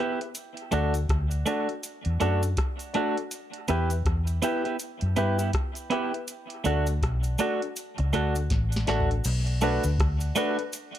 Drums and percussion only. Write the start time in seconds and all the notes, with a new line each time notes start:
0.21 closed hi-hat
0.35 closed hi-hat, cabasa
0.57 closed hi-hat
0.72 closed hi-hat, cabasa
0.94 closed hi-hat, cabasa
1.09 kick, cross-stick, closed hi-hat
1.31 closed hi-hat, cabasa
1.46 closed hi-hat, cabasa
1.69 closed hi-hat
1.83 closed hi-hat, cabasa
2.05 closed hi-hat
2.21 closed hi-hat, cabasa
2.43 closed hi-hat, cabasa
2.57 kick, cross-stick, closed hi-hat
2.79 closed hi-hat, cabasa
2.94 closed hi-hat
3.18 closed hi-hat
3.31 closed hi-hat, cabasa
3.53 closed hi-hat
3.68 closed hi-hat, cabasa
3.90 closed hi-hat, cabasa
4.05 kick, cross-stick, closed hi-hat
4.27 closed hi-hat, cabasa
4.42 closed hi-hat, cabasa
4.65 closed hi-hat
4.79 closed hi-hat, cabasa
5.01 closed hi-hat
5.16 closed hi-hat, cabasa
5.39 closed hi-hat, cabasa
5.53 kick, cross-stick, closed hi-hat
5.75 closed hi-hat, cabasa
5.91 closed hi-hat
6.14 closed hi-hat
6.28 closed hi-hat, cabasa
6.50 closed hi-hat
6.65 closed hi-hat, cabasa
6.87 closed hi-hat, cabasa
7.02 kick, cross-stick, closed hi-hat
7.23 closed hi-hat, cabasa
7.38 closed hi-hat, cabasa
7.62 closed hi-hat
7.76 closed hi-hat, cabasa
7.98 closed hi-hat
8.13 closed hi-hat, cabasa
8.35 closed hi-hat, cabasa
8.50 kick, snare, closed hi-hat
8.72 closed hi-hat, cabasa
8.76 snare
8.87 snare, closed hi-hat
9.00 floor tom
9.11 closed hi-hat
9.24 closed hi-hat, crash, cabasa
9.47 closed hi-hat
9.61 closed hi-hat, cabasa
9.84 closed hi-hat, cabasa
9.99 kick, cross-stick, closed hi-hat
10.20 closed hi-hat, cabasa
10.36 closed hi-hat, cabasa
10.59 closed hi-hat
10.73 closed hi-hat, cabasa
10.95 closed hi-hat